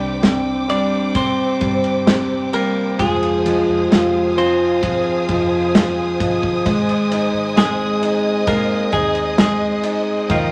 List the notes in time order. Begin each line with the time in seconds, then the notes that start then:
Already playing: C3 G3 D4 G4 C5 D5 G5 D6
0.00 C2
0.22 C3 C4, snare, ride
0.68 G3 D4 D5, ride
1.15 C3 C4 G4 C5, kick, ride
1.61 G1 G3 D4, kick, ride
1.84 ride
2.06 C3 G4, snare, ride
2.53 G3 A#3 D4 A#4, ride
2.99 F1 F3 G#3 G#4 F5 G#5 D#6, kick, ride
3.23 ride
3.46 F3 D#4, ride
3.68 F1
3.87 F1 G4
3.91 F3 C4, snare, ride
4.37 F3 C4 D#4 C5, ride
4.83 F3 G#4, kick, ride
5.29 F1 F3 D#4, kick, ride
5.75 F3 G#4, snare, ride
6.20 G1 F3 D#4, kick, ride
6.43 kick
6.66 G#1 G#2 G#3 D#5, kick, ride
6.89 ride
7.11 D#4, ride
7.34 G#1
7.56 G#3 C4 G#4, snare, ride
8.01 D#4, ride
8.47 G#3 A#3 G#4 A#4, kick, ride
8.92 D#2 G#3 D#4 G#4, kick, ride
9.15 ride
9.38 G#3 G#4, snare, ride
9.83 D#4, ride
10.30 D#2 D#3 F3 F4 A#4 G5, kick, ride